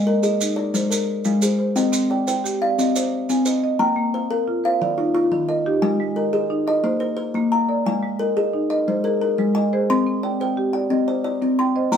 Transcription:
0.00 0.24 G#3 medium
0.00 0.24 D#5 medium
0.07 0.58 A#4 medium
0.07 0.22 D#5 medium
0.23 0.57 G#4 medium
0.23 0.75 D#5 medium
0.23 maracas medium
0.41 0.75 D#4 medium
0.41 maracas medium
0.56 1.09 A#4 medium
0.56 1.08 D5 medium
0.74 1.08 G#3 medium
0.74 1.09 C5 medium
0.74 maracas medium
0.91 1.42 A#4 medium
0.91 maracas medium
1.25 1.59 G#3 medium
1.25 1.76 F5 medium
1.25 maracas medium
1.42 1.93 G#4 medium
1.42 1.57 C5 medium
1.42 maracas medium
1.59 1.93 C5 medium
1.76 2.10 C4 medium
1.76 2.10 D#5 medium
1.76 2.27 G5 medium
1.76 maracas medium
1.92 2.27 C4 medium
1.92 maracas medium
2.10 2.61 D5 medium
2.10 2.26 G5 medium
2.27 2.61 C5 medium
2.27 2.78 G5 medium
2.27 maracas medium
2.44 2.78 G4 medium
2.44 maracas medium
2.62 3.13 D5 medium
2.62 3.12 F5 medium
2.79 3.12 C4 medium
2.79 3.13 D#5 medium
2.79 maracas medium
2.96 3.46 C5 medium
2.96 3.47 D5 medium
2.96 maracas medium
3.29 3.63 C4 medium
3.29 3.80 G#5 medium
3.29 maracas soft
3.46 3.97 C5 medium
3.46 3.62 D#5 medium
3.46 maracas medium
3.64 3.97 D#5 medium
3.79 4.13 A#3 medium
3.79 4.14 G5 medium
3.79 4.30 A#5 medium
3.96 4.30 A#3 medium
4.14 4.65 C5 medium
4.14 4.30 F5 medium
4.31 4.64 A#4 medium
4.31 4.82 F5 medium
4.48 4.81 F4 medium
4.64 5.15 C5 medium
4.64 4.99 F5 medium
4.81 5.15 D#3 medium
4.81 4.98 D5 medium
4.98 5.49 D#4 medium
4.98 5.13 F4 medium
5.15 5.66 F4 medium
5.32 5.66 D#3 medium
5.49 5.82 A#4 medium
5.49 6.00 D#5 medium
5.66 6.17 D#4 medium
5.66 6.00 G4 medium
5.82 6.16 G#3 medium
5.82 6.17 A#4 medium
5.82 6.33 G#5 medium
6.00 6.34 G#3 medium
6.16 6.67 A#4 medium
6.16 6.32 D#5 medium
6.33 6.67 G#4 medium
6.33 6.84 D#5 medium
6.50 6.84 D#4 medium
6.67 6.99 A#4 medium
6.67 7.01 D#5 medium
6.84 7.18 A#3 medium
6.84 7.01 C5 medium
7.00 7.52 A#4 medium
7.00 7.15 C5 medium
7.17 7.68 C5 medium
7.34 7.69 A#3 medium
7.52 7.84 F5 medium
7.52 8.03 A#5 medium
7.68 8.20 A#4 medium
7.68 8.03 D5 medium
7.86 8.20 G#3 medium
7.86 8.20 F5 medium
7.86 8.37 G#5 medium
8.03 8.37 G#3 medium
8.19 8.70 A#4 medium
8.19 8.35 D#5 medium
8.37 8.71 G#4 medium
8.37 8.87 D#5 medium
8.53 8.87 D#4 medium
8.70 9.22 A#4 medium
8.70 9.21 D#5 medium
8.88 9.22 G#3 medium
8.88 9.22 C5 medium
9.04 9.55 G#4 medium
9.04 9.20 A#4 medium
9.21 9.72 A#4 medium
9.38 9.72 G#3 medium
9.38 9.73 G#3 medium
9.55 10.07 D#5 medium
9.55 10.06 G#5 medium
9.73 10.24 G#4 medium
9.73 10.07 C5 loud
9.90 10.24 C4 medium
9.90 10.40 C6 medium
10.07 10.40 C4 medium
10.23 10.74 D5 medium
10.23 10.39 G5 medium
10.41 10.74 C5 medium
10.41 10.91 G5 medium
10.57 10.91 G4 medium
10.73 11.25 D5 medium
10.73 11.24 G5 medium
10.90 11.25 C4 medium
10.90 11.25 D#5 medium
11.08 11.59 C5 medium
11.08 11.23 D5 medium
11.24 11.75 D5 medium
11.42 11.76 C4 medium
11.59 11.92 G5 medium
11.59 11.97 C6 medium
11.76 11.97 C5 medium
11.76 11.97 D#5 medium
11.92 11.97 A#3 medium
11.92 11.97 G5 medium
11.92 11.97 A#5 medium
11.92 maracas medium

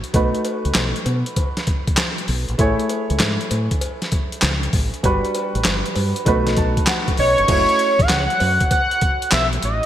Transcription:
0.00 0.10 E4 medium
0.00 0.11 F#4 medium
0.00 0.11 C#5 medium
0.00 closed hi-hat soft
0.14 0.31 B1 loud
0.14 2.55 A3 medium
0.14 2.55 D#4 medium
0.14 2.55 F#4 medium
0.14 2.56 B4 medium
0.14 kick loud
0.14 closed hi-hat medium
0.14 cowbell medium
0.35 closed hi-hat soft
0.45 closed hi-hat medium
0.45 cowbell medium
0.65 0.73 C#2 medium
0.65 closed hi-hat soft
0.74 0.92 B1 medium
0.74 snare loud
0.74 clap medium
0.74 closed hi-hat medium
0.74 cowbell medium
0.96 closed hi-hat soft
1.06 1.22 B2 loud
1.06 closed hi-hat medium
1.06 cowbell medium
1.26 closed hi-hat medium
1.36 kick loud
1.36 closed hi-hat medium
1.36 cowbell medium
1.57 snare medium
1.57 closed hi-hat medium
1.67 kick loud
1.67 closed hi-hat medium
1.87 kick loud
1.87 closed hi-hat medium
1.97 snare loud
1.97 clap loud
1.97 closed hi-hat medium
1.97 cowbell medium
2.18 closed hi-hat soft
2.28 2.45 B1 medium
2.28 open hi-hat medium
2.48 2.57 A#1 medium
2.48 closed hi-hat soft
2.58 2.75 A1 medium
2.58 4.99 A3 medium
2.58 5.00 E4 medium
2.58 5.00 G#4 medium
2.58 5.01 C#5 medium
2.58 kick loud
2.58 closed hi-hat medium
2.58 cowbell medium
2.79 closed hi-hat soft
2.89 closed hi-hat medium
2.89 cowbell medium
3.10 3.18 C#2 medium
3.10 closed hi-hat medium
3.19 3.37 G#2 medium
3.19 snare loud
3.19 clap medium
3.19 closed hi-hat medium
3.19 cowbell medium
3.41 closed hi-hat soft
3.51 3.67 A2 medium
3.51 closed hi-hat medium
3.51 cowbell medium
3.71 kick medium
3.71 closed hi-hat medium
3.81 closed hi-hat medium
3.81 cowbell medium
4.02 snare medium
4.02 closed hi-hat soft
4.12 kick loud
4.12 closed hi-hat medium
4.32 closed hi-hat medium
4.42 4.68 C#2 loud
4.42 snare loud
4.42 clap loud
4.42 closed hi-hat medium
4.42 cowbell medium
4.63 closed hi-hat soft
4.73 4.90 A1 medium
4.73 kick loud
4.73 open hi-hat medium
4.94 closed hi-hat soft
5.03 5.20 G1 loud
5.03 6.23 G3 medium
5.03 6.24 D4 medium
5.03 6.24 F#4 medium
5.03 6.25 B4 medium
5.03 kick loud
5.03 closed hi-hat medium
5.03 cowbell medium
5.25 closed hi-hat soft
5.35 closed hi-hat medium
5.35 cowbell medium
5.55 5.63 A1 loud
5.55 closed hi-hat medium
5.64 5.82 G1 medium
5.64 snare loud
5.64 clap medium
5.64 closed hi-hat medium
5.64 cowbell medium
5.86 closed hi-hat soft
5.95 6.12 G2 medium
5.95 open hi-hat medium
5.95 cowbell medium
6.16 closed hi-hat medium
6.25 6.76 B1 loud
6.25 7.46 A3 medium
6.25 7.46 D#4 medium
6.25 7.47 F#4 medium
6.25 7.47 B4 medium
6.25 kick medium
6.25 closed hi-hat medium
6.25 cowbell medium
6.47 snare medium
6.47 closed hi-hat medium
6.57 6.86 A5 medium
6.57 kick loud
6.57 closed hi-hat medium
6.77 kick medium
6.77 closed hi-hat medium
6.87 7.16 F#5 medium
6.87 snare loud
6.87 clap medium
6.87 closed hi-hat medium
6.87 cowbell medium
7.08 kick medium
7.08 closed hi-hat soft
7.17 7.35 B1 medium
7.17 8.02 C#5 loud
7.17 7.47 D#5 medium
7.17 open hi-hat medium
7.38 7.47 G1 medium
7.38 closed hi-hat soft
7.48 7.65 F#1 medium
7.48 9.86 A3 medium
7.48 9.86 E4 medium
7.48 9.86 F#4 medium
7.48 9.86 C#5 medium
7.48 kick loud
7.48 closed hi-hat medium
7.48 crash medium
7.48 cowbell medium
7.69 closed hi-hat soft
7.79 closed hi-hat medium
7.99 8.08 A1 medium
7.99 8.72 F#5 loud
7.99 kick loud
7.99 closed hi-hat medium
8.09 8.27 C#2 medium
8.09 snare loud
8.09 clap medium
8.09 closed hi-hat medium
8.09 cowbell medium
8.30 closed hi-hat soft
8.40 8.57 F#2 loud
8.40 open hi-hat medium
8.40 cowbell medium
8.60 kick medium
8.60 closed hi-hat medium
8.71 9.29 F#5 loud
8.71 kick loud
8.71 closed hi-hat medium
8.71 cowbell medium
8.91 closed hi-hat medium
9.01 kick loud
9.01 closed hi-hat medium
9.22 closed hi-hat medium
9.31 9.57 B1 loud
9.31 9.47 E5 medium
9.31 snare loud
9.31 clap loud
9.31 closed hi-hat medium
9.31 cowbell medium
9.53 closed hi-hat soft
9.62 9.80 A1 medium
9.62 9.86 D#5 loud
9.62 closed hi-hat medium

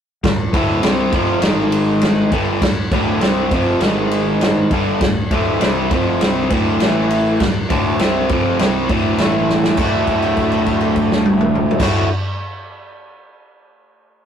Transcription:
0.23 0.51 D1 medium
0.23 0.47 D2 medium
0.23 0.48 A2 medium
0.23 kick loud
0.23 snare loud
0.23 ride loud
0.53 0.81 D1 medium
0.53 0.82 D2 medium
0.53 0.83 A2 loud
0.53 0.83 D3 loud
0.53 kick loud
0.53 ride medium
0.82 1.11 C2 medium
0.82 1.12 C3 medium
0.82 1.12 G3 medium
0.82 1.13 C4 loud
0.82 snare loud
0.82 ride loud
1.12 1.41 F1 medium
1.12 1.42 F2 medium
1.12 1.42 C3 medium
1.12 1.43 F3 loud
1.12 kick loud
1.12 ride medium
1.42 2.29 G#1 medium
1.42 2.31 G#2 medium
1.42 2.31 D#3 medium
1.42 2.32 G#3 loud
1.42 snare loud
1.42 ride loud
1.72 ride medium
2.01 snare loud
2.01 ride loud
2.32 2.60 G1 medium
2.32 2.61 G2 loud
2.32 2.62 D3 loud
2.32 2.62 G3 medium
2.32 kick loud
2.32 ride medium
2.62 2.90 D1 medium
2.62 2.86 D2 medium
2.62 2.87 A2 medium
2.62 kick loud
2.62 snare loud
2.62 ride loud
2.91 3.20 D1 loud
2.91 3.21 D2 medium
2.91 3.22 A2 loud
2.91 3.22 D3 loud
2.91 kick loud
2.91 ride medium
3.21 3.50 C2 medium
3.21 3.51 C3 loud
3.21 3.51 G3 medium
3.21 3.52 C4 loud
3.21 snare loud
3.21 ride medium
3.51 3.79 F1 medium
3.51 3.83 F2 medium
3.51 3.84 C3 medium
3.51 3.84 F3 loud
3.51 kick loud
3.51 ride medium
3.81 4.67 G#1 loud
3.81 4.71 G#2 loud
3.81 4.72 D#3 medium
3.81 4.72 G#3 loud
3.81 snare loud
3.81 ride medium
4.11 ride medium
4.41 snare loud
4.41 ride medium
4.71 4.99 G1 loud
4.71 5.00 G2 medium
4.71 5.01 D3 medium
4.71 5.01 G3 loud
4.71 kick loud
4.71 ride medium
5.01 5.29 D1 medium
5.01 5.26 D2 medium
5.01 5.26 A2 medium
5.01 kick loud
5.01 snare loud
5.01 ride loud
5.31 5.59 D1 loud
5.31 5.60 D2 loud
5.31 5.61 A2 medium
5.31 5.61 D3 loud
5.31 kick loud
5.31 ride medium
5.61 5.89 C2 medium
5.61 5.90 C3 medium
5.61 5.90 G3 loud
5.61 5.91 C4 loud
5.61 snare loud
5.61 ride loud
5.91 6.19 F1 medium
5.91 6.20 F2 medium
5.91 6.20 C3 loud
5.91 6.22 F3 loud
5.91 kick loud
5.91 ride medium
6.21 6.49 C2 medium
6.21 6.50 C3 medium
6.21 6.51 G3 loud
6.21 6.51 C4 loud
6.21 snare loud
6.21 ride loud
6.50 6.79 D1 loud
6.50 6.80 D2 medium
6.50 6.80 A2 loud
6.50 6.81 D3 loud
6.50 kick loud
6.50 ride medium
6.80 7.37 A1 medium
6.80 7.40 A2 medium
6.80 7.41 E3 loud
6.80 7.41 A3 loud
6.80 snare loud
6.80 ride loud
7.11 ride medium
7.40 7.68 D1 medium
7.40 7.65 D2 medium
7.40 7.65 A2 medium
7.40 kick loud
7.40 snare loud
7.40 ride loud
7.69 7.98 D1 medium
7.69 7.99 D2 medium
7.69 7.99 A2 loud
7.69 8.00 D3 loud
7.69 kick loud
7.69 ride medium
7.99 8.28 C2 medium
7.99 8.29 C3 loud
7.99 8.29 G3 medium
7.99 8.30 C4 loud
7.99 snare loud
7.99 ride loud
8.29 8.58 F1 medium
8.29 8.59 F2 medium
8.29 8.58 C3 loud
8.29 8.60 F3 loud
8.29 kick loud
8.29 ride medium
8.59 8.87 C2 loud
8.59 8.88 C3 medium
8.59 8.89 G3 medium
8.59 8.90 C4 medium
8.59 snare loud
8.59 ride loud
8.89 9.17 D1 medium
8.89 9.18 D2 loud
8.89 9.18 A2 loud
8.89 9.19 D3 loud
8.89 kick loud
8.89 ride medium
9.18 9.74 A1 medium
9.18 9.78 A2 loud
9.18 9.78 E3 loud
9.18 9.79 A3 loud
9.18 snare loud
9.18 ride medium
9.49 snare medium
9.64 snare loud
9.77 11.69 D1 loud
9.77 11.78 D2 medium
9.77 11.79 A2 loud
9.77 11.80 D3 loud
9.77 11.81 A3 loud
9.77 kick loud
9.77 crash medium
9.82 11.82 F#4 loud
10.07 kick medium
10.07 crash soft
10.22 crash soft
10.37 kick medium
10.37 crash soft
10.52 crash soft
10.66 kick medium
10.66 crash medium
10.81 crash medium
10.96 kick medium
10.96 crash medium
11.12 snare medium
11.26 high tom loud
11.41 mid tom loud
11.55 mid tom medium
11.71 floor tom loud
11.78 12.04 D1 medium
11.78 12.06 D2 medium
11.78 12.06 A2 loud
11.78 12.07 D3 loud
11.78 12.07 A3 loud
11.78 kick loud
11.78 snare loud
11.78 crash loud
11.83 12.08 F#4 loud

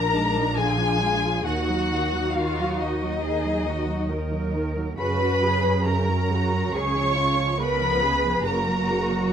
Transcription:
0.00 1.43 A#1 medium
0.00 0.14 F3 medium
0.00 0.14 D4 medium
0.00 1.46 D4 medium
0.00 0.59 A#4 loud
0.00 0.58 A#5 loud
0.13 0.36 G#3 medium
0.13 0.58 D#4 medium
0.35 0.58 F3 medium
0.57 0.79 D3 medium
0.57 1.46 F4 medium
0.57 1.46 G#4 medium
0.57 1.46 G#5 loud
0.79 1.02 F3 medium
1.02 1.24 G#3 medium
1.24 1.46 F3 medium
1.46 4.94 D#2 medium
1.46 1.67 D#3 medium
1.46 4.94 D#4 medium
1.46 3.20 F#4 medium
1.46 2.35 F#4 medium
1.46 2.34 F#5 medium
1.68 1.91 F#3 medium
1.91 2.13 D#3 medium
2.13 2.35 F#3 medium
2.35 2.58 D#3 medium
2.35 2.79 F4 medium
2.35 2.80 F5 medium
2.58 2.80 F#3 medium
2.79 3.02 D#3 medium
2.79 4.54 D#4 medium
2.79 4.54 D#5 medium
3.03 3.24 F#3 medium
3.24 3.44 D#3 medium
3.24 3.66 G#4 medium
3.45 3.67 F#3 medium
3.67 3.89 D#3 medium
3.67 4.10 F#4 medium
3.88 4.10 F#3 medium
4.10 4.32 D#3 medium
4.10 4.99 A#4 medium
4.32 4.54 F#3 medium
4.53 4.76 D#3 medium
4.76 4.98 F#3 medium
4.98 6.70 F#2 medium
4.98 5.19 C#3 medium
4.98 7.55 C#4 medium
4.98 5.42 F#4 medium
4.98 5.83 B4 loud
4.98 5.83 B5 loud
5.20 5.42 F#3 medium
5.42 5.65 C#3 medium
5.42 5.87 G#4 medium
5.65 5.87 F#3 medium
5.86 6.09 C#3 medium
5.86 6.31 A#4 medium
5.86 6.73 A#4 medium
5.86 6.73 A#5 medium
6.09 6.30 F#3 medium
6.30 6.52 C#3 medium
6.30 6.74 F#4 medium
6.53 6.74 F#3 medium
6.74 8.42 C#2 medium
6.74 6.94 C#3 medium
6.74 7.16 G#4 medium
6.74 7.59 C#5 loud
6.74 7.59 C#6 loud
6.95 7.16 F3 medium
7.16 7.37 C#3 medium
7.16 7.58 F4 medium
7.38 7.59 F3 medium
7.58 7.80 C#3 medium
7.58 8.45 B3 medium
7.58 8.01 A#4 medium
7.58 8.44 B4 loud
7.58 8.45 B5 loud
7.81 8.02 F3 medium
8.02 8.24 C#3 medium
8.02 8.45 G#4 medium
8.25 8.46 F3 medium
8.45 9.33 F#1 medium
8.45 8.65 C#3 medium
8.45 9.33 A#3 medium
8.45 9.33 F#4 medium
8.45 9.33 A#4 medium
8.45 9.31 A#5 loud
8.68 8.90 F#3 medium
8.89 9.11 C#3 medium
9.11 9.33 F#3 medium

